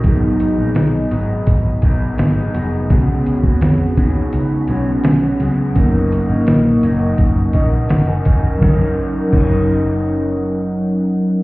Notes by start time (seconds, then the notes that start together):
Already playing: A#5
0.03 G#1 G#2 D#3 F#3 B3 D#4 G#4 D#5 B5, kick, closed hi-hat
0.07 D#4 G#4
0.40 closed hi-hat
0.57 A#1 F#3 B3 D#4
0.75 B1, snare, closed hi-hat
1.11 G#1 D#3 F#3 B3 D#4, closed hi-hat
1.47 G#1, kick, closed hi-hat
1.82 B1 D#3 F#3 B3 D#4, kick, closed hi-hat
2.18 G#1, snare, closed hi-hat
2.36 F#3 B3 D#4
2.53 F1 D#3 F#3 B3 D#4, closed hi-hat
2.88 C#2 C#3 F3 G#3 B3 C#4 F#4 C#5 F#5, kick, closed hi-hat
2.93 F#4 G#4
3.26 closed hi-hat
3.43 D#2 G#3 B3 F#4, kick
3.61 F2, snare, closed hi-hat
3.97 D#2 C#3 G#3 B3 D#4 F#4, kick, closed hi-hat
4.32 C#2 D#4, closed hi-hat
4.68 B1 C#3 G#3 B3 C#4 F#4, closed hi-hat
5.04 B1, snare, closed hi-hat
5.23 G#3 B3 F#4
5.39 C#2 C#3 F#3 G#3 B3 C#4 F#4 G#4, closed hi-hat
5.74 F#1 F#3 A#3 C#4 D#4 A#4 D#5 C#6, kick, closed hi-hat
5.79 A#4
6.12 closed hi-hat
6.29 G#1 C#4 D#4 A#4
6.47 A#1, snare, closed hi-hat
6.82 F#1 F#3 C#4 D#4 A#4, closed hi-hat
7.18 F#1, kick, closed hi-hat
7.53 A#1 F#3 C#4 D#4 A#4 D#5, kick, closed hi-hat
7.89 F#1 F#5, snare, closed hi-hat
8.07 C#4 D#4 A#4 G#5
8.25 F1 F#3 C#4 D#4 A#4, kick, closed hi-hat
8.56 F#3
8.61 F#1 F#3 C#4 D#4 A#4 D#5 F#5, kick, snare
8.68 D#4 A#4
8.74 A#4
9.27 F#3 C#4
9.33 F#1 F#3 C#4 D#4, kick, crash
9.38 D#4 A#4
9.45 A#4